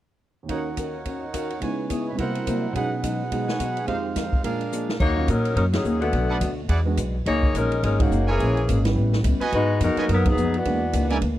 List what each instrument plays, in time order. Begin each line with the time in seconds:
0.43 upright piano D#2 D#3
0.49 steel-string acoustic guitar D#3 C#4 F#4 A#4, trumpet section D#4 A#4 C#5 F#5, upright piano F#4 F5, kick, ride
0.54 upright piano C#5
0.77 steel-string acoustic guitar D#3 C#4 F#4 A#4, kick, hi-hat pedal, ride
1.05 steel-string acoustic guitar D#3 C#4 F#4 A#4, kick, ride
1.19 upright piano D#5
1.33 steel-string acoustic guitar D#3 C#4 F#4 A#4, upright piano F5, kick, hi-hat pedal, ride
1.49 upright piano F#5, ride
1.60 upright piano C#3 G#3 D#4 E4, steel-string acoustic guitar C#3 B3 E4, trumpet section B4 C#5 G#5, kick, ride
1.64 steel-string acoustic guitar G#4, upright piano B4
1.90 steel-string acoustic guitar C#3 B3 E4 G#4, upright piano C#5, trumpet section D#6, kick, hi-hat pedal, ride
2.00 upright piano D#5, trumpet section C#6
2.08 upright piano C3 E5, trumpet section B5
2.15 steel-string acoustic guitar C3, upright piano G3 E4, trumpet section E4 A#4 C5 F#5, kick, ride
2.19 steel-string acoustic guitar F#3 A#3 E4, upright piano F#4 A#4
2.35 ride
2.46 steel-string acoustic guitar C3 F#3 A#3 E4, upright piano C5, kick, hi-hat pedal, ride
2.54 upright piano D5
2.61 upright piano E5
2.68 upright piano F#5
2.72 upright piano B2 F#3 C#4 D#4, steel-string acoustic guitar B2 F#3 G#3, trumpet section D#4 G#4 B4 F#5, kick, ride
2.77 steel-string acoustic guitar D#4, upright piano G#4
3.03 steel-string acoustic guitar B2 F#3 G#3 D#4, kick, hi-hat pedal, ride
3.31 steel-string acoustic guitar B2 F#3 G#3 D#4, upright piano G#3 D#4 F#4 G#4, kick, ride
3.48 trumpet section B4 C#5 G#5 D#6, snare
3.60 steel-string acoustic guitar B2 F#3 G#3 D#4, trumpet section C#6, kick, hi-hat pedal, ride
3.69 trumpet section B5
3.77 trumpet section G#5, ride
3.87 upright piano F2 F3 G#3 D#4 G4, steel-string acoustic guitar F2 D#3 G#3 C4, trumpet section D#4 C5 F5, kick, ride
4.15 steel-string acoustic guitar F2 D#3 G#3 C4, kick, snare, hi-hat pedal, ride
4.33 kick
4.43 upright piano A#2 F3 G#3 D4 A#4, steel-string acoustic guitar A#2 F3 G#3 D4, trumpet section D4 G#4 A#4 F5, kick, ride
4.61 ride
4.72 steel-string acoustic guitar A#2 F3 G#3 D4, hi-hat pedal
4.89 snare
4.99 upright bass D#2, steel-string acoustic guitar D#3 A#3 C#4 F#4, saxophone section A#3 D#4 F#4 C#5, kick, crash
5.16 upright piano F#3 A#3 C#4 F4
5.28 upright bass A#2, steel-string acoustic guitar D#3 A#3 C#4 F#4, saxophone section F#3 C#4 D#4 A#4, kick, hi-hat pedal, ride
5.45 ride
5.55 upright bass F#2, steel-string acoustic guitar D#3 A#3 C#4 F#4, saxophone section F#3 C#4 D#4 A#4, kick, ride
5.72 saxophone section F#3 C#4 D#4 G#4, snare, ride
5.83 upright bass D#2, steel-string acoustic guitar D#3 A#3 C#4 F#4, hi-hat pedal
6.00 saxophone section D3 A3 B3 F#4, ride
6.12 upright bass B1, steel-string acoustic guitar B2 A3 D4 F#4, kick, ride
6.29 trumpet section D4 A4 B4 F#5
6.40 upright bass D2, steel-string acoustic guitar B2 A3 D4 F#4, kick, hi-hat pedal, ride
6.68 upright bass E2, steel-string acoustic guitar E3 G#3 D4 F#4, trumpet section E4 G#4 D5 F#5, kick, ride
6.85 upright piano G#3 B3 D4 F#4
6.97 upright bass B1, steel-string acoustic guitar E3 G#3 D4 F#4, kick, hi-hat pedal, ride
7.25 upright bass C#2, steel-string acoustic guitar F#3 A#3 D#4 G#4, saxophone section A#3 D#4 G#4 C#5, kick, ride
7.43 kick
7.54 upright bass A#1, steel-string acoustic guitar F#3 A#3 D#4 G#4, saxophone section G#3 C#4 D#4 A#4, hi-hat pedal, ride
7.72 ride
7.82 upright bass G#1, steel-string acoustic guitar F#3 A#3 D#4 G#4, saxophone section G#3 C#4 D#4 A#4, kick, ride
7.99 saxophone section D#3 A#3 C#4 F#4, upright piano G#3 A#3 C#4 D#4, kick, ride
8.10 upright bass F#1, steel-string acoustic guitar F#3 A#3 D#4 G#4, hi-hat pedal
8.28 saxophone section E3 A#3 C#4 G#4, trumpet section E4 A#4 C#5 G#5
8.39 upright bass A#1, steel-string acoustic guitar A#2 E3 G#3 C#4, kick, ride
8.57 ride
8.68 upright bass G#1, steel-string acoustic guitar A#2 E3 G#3 C#4, kick, hi-hat pedal, ride
8.85 upright piano G3 B3 C#4 E4, snare, ride
8.96 upright bass A1, steel-string acoustic guitar A2 G3 B3 C#4, kick
9.13 snare
9.24 upright bass C#2, steel-string acoustic guitar A2 G3 B3 C#4, kick, hi-hat pedal, ride
9.40 trumpet section F#4 B4 D#5 G#5, muted upright bass stroke, ride
9.52 steel-string acoustic guitar G#2 F#3 B3 D#4, upright bass G#2, saxophone section G#3 D#4 F#4 B4, kick, ride
9.80 upright bass F2, steel-string acoustic guitar G#2 F#3 B3 D#4, saxophone section G#3 D#4 F#4 A#4, kick, hi-hat pedal, ride
9.96 upright piano F#3 A#3 B3 D#4, trumpet section F#4 B4 D#5 G#5, muted upright bass stroke, ride
10.08 upright bass F#2, steel-string acoustic guitar G#2 F#3 B3 D#4, kick, ride
10.13 saxophone section F#3 B3 D#4 A#4
10.26 upright piano F#3 A#3 B3 D#4, saxophone section F#3 B3 D#4 G#4, kick, ride
10.36 upright bass F2, steel-string acoustic guitar G#2 F#3 B3 D#4, hi-hat pedal
10.54 saxophone section E3 B3 D4 F#4, ride
10.65 upright bass E2, steel-string acoustic guitar E3 A#3 D4 G#4, upright piano G#3 A#3 B3 D4, kick, ride
10.93 upright bass C#2, steel-string acoustic guitar E3 A#3 D4 G#4, kick, hi-hat pedal, ride
11.10 upright piano G#3 A#3 B3 D4, trumpet section E4 A#4 D5 G#5, ride
11.21 upright bass D2, steel-string acoustic guitar E3 A#3 D4 G#4, kick, ride